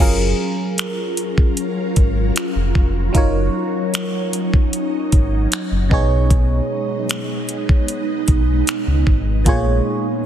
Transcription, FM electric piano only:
0, 0, Header, 1, 2, 480
1, 0, Start_track
1, 0, Key_signature, 6, "major"
1, 0, Tempo, 789474
1, 1915, Time_signature, 4, 2, 24, 8
1, 6237, End_track
2, 0, Start_track
2, 0, Title_t, "FM electric piano"
2, 0, Program_c, 0, 5
2, 0, Control_c, 0, 64, 127
2, 0, Note_on_c, 0, 54, 69
2, 0, Note_on_c, 0, 61, 66
2, 0, Note_on_c, 0, 65, 64
2, 2, Control_c, 0, 64, 0
2, 3, Note_on_c, 0, 68, 68
2, 11, Note_on_c, 0, 70, 76
2, 125, Control_c, 0, 64, 127
2, 1884, Note_off_c, 0, 54, 0
2, 1887, Note_off_c, 0, 61, 0
2, 1891, Note_off_c, 0, 65, 0
2, 1895, Note_off_c, 0, 68, 0
2, 1898, Note_off_c, 0, 70, 0
2, 1901, Note_on_c, 0, 54, 74
2, 1908, Note_on_c, 0, 63, 66
2, 1915, Note_on_c, 0, 65, 70
2, 1922, Control_c, 0, 64, 0
2, 1923, Note_on_c, 0, 70, 63
2, 1930, Note_on_c, 0, 73, 81
2, 2040, Control_c, 0, 64, 127
2, 3563, Note_off_c, 0, 54, 0
2, 3567, Note_off_c, 0, 63, 0
2, 3570, Note_off_c, 0, 65, 0
2, 3574, Note_off_c, 0, 70, 0
2, 3578, Note_off_c, 0, 73, 0
2, 3582, Note_on_c, 0, 47, 71
2, 3589, Note_on_c, 0, 59, 66
2, 3596, Note_on_c, 0, 63, 64
2, 3602, Control_c, 0, 64, 0
2, 3604, Note_on_c, 0, 68, 66
2, 3610, Note_on_c, 0, 73, 83
2, 3691, Control_c, 0, 64, 127
2, 5484, Note_off_c, 0, 47, 0
2, 5487, Note_off_c, 0, 59, 0
2, 5491, Note_off_c, 0, 63, 0
2, 5495, Note_off_c, 0, 68, 0
2, 5498, Note_off_c, 0, 73, 0
2, 5742, Note_on_c, 0, 46, 76
2, 5748, Note_on_c, 0, 58, 68
2, 5755, Note_on_c, 0, 65, 68
2, 5762, Control_c, 0, 64, 0
2, 5762, Note_on_c, 0, 68, 65
2, 5770, Note_on_c, 0, 73, 83
2, 5875, Control_c, 0, 64, 127
2, 6237, Note_off_c, 0, 46, 0
2, 6237, Note_off_c, 0, 58, 0
2, 6237, Note_off_c, 0, 65, 0
2, 6237, Note_off_c, 0, 68, 0
2, 6237, Note_off_c, 0, 73, 0
2, 6237, End_track
0, 0, End_of_file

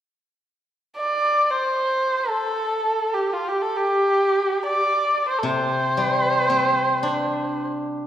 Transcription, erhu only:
0, 0, Header, 1, 2, 480
1, 0, Start_track
1, 0, Tempo, 500000
1, 7746, End_track
2, 0, Start_track
2, 0, Title_t, "Erhu"
2, 0, Program_c, 0, 110
2, 928, Note_on_c, 0, 74, 72
2, 1436, Note_on_c, 0, 72, 73
2, 1451, Note_off_c, 0, 74, 0
2, 2192, Note_on_c, 0, 69, 73
2, 2207, Note_off_c, 0, 72, 0
2, 3011, Note_on_c, 0, 67, 59
2, 3026, Note_off_c, 0, 69, 0
2, 3198, Note_on_c, 0, 65, 61
2, 3212, Note_off_c, 0, 67, 0
2, 3343, Note_on_c, 0, 67, 59
2, 3357, Note_off_c, 0, 65, 0
2, 3471, Note_on_c, 0, 69, 64
2, 3485, Note_off_c, 0, 67, 0
2, 3613, Note_on_c, 0, 67, 74
2, 3627, Note_off_c, 0, 69, 0
2, 4445, Note_on_c, 0, 74, 66
2, 4459, Note_off_c, 0, 67, 0
2, 5065, Note_off_c, 0, 74, 0
2, 5071, Note_on_c, 0, 72, 63
2, 5173, Note_on_c, 0, 69, 50
2, 5187, Note_off_c, 0, 72, 0
2, 5235, Note_on_c, 0, 72, 73
2, 5250, Note_off_c, 0, 69, 0
2, 7357, Note_off_c, 0, 72, 0
2, 7746, End_track
0, 0, End_of_file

